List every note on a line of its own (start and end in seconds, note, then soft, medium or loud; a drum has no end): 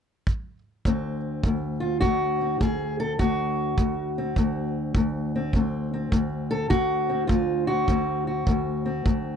0.27 kick medium
0.85 1.45 D2 medium
0.85 2.41 C4 soft
0.85 kick medium
1.44 2.03 D2 medium
1.44 kick medium
1.80 2.00 F4 medium
2.01 2.60 D2 medium
2.01 2.60 F#4 loud
2.01 kick medium
2.41 3.22 C4 soft
2.60 3.20 D2 medium
2.60 2.99 G#4 medium
2.60 kick medium
3.00 3.12 A4 loud
3.19 3.78 D2 medium
3.19 5.53 F#4 medium
3.19 kick medium
3.78 4.37 D2 medium
3.78 kick medium
4.18 5.35 C4 medium
4.36 4.96 D2 medium
4.36 kick medium
4.95 5.55 D2 medium
4.95 kick medium
5.36 5.56 C4 medium
5.53 6.11 D2 medium
5.53 5.93 C4 soft
5.53 kick medium
5.94 7.08 C4 soft
6.12 6.70 D2 medium
6.12 kick medium
6.51 6.70 A4 medium
6.70 7.28 D2 medium
6.70 7.27 F#4 loud
6.70 kick medium
7.09 7.86 C4 soft
7.27 7.87 D2 medium
7.27 7.67 F4 medium
7.27 kick medium
7.67 8.26 F#4 medium
7.88 8.46 D2 medium
7.88 8.84 C4 medium
7.88 kick medium
8.27 9.36 F#4 soft
8.47 9.04 D2 medium
8.47 kick medium
8.86 9.36 C4 soft
9.06 9.36 D2 medium
9.06 kick medium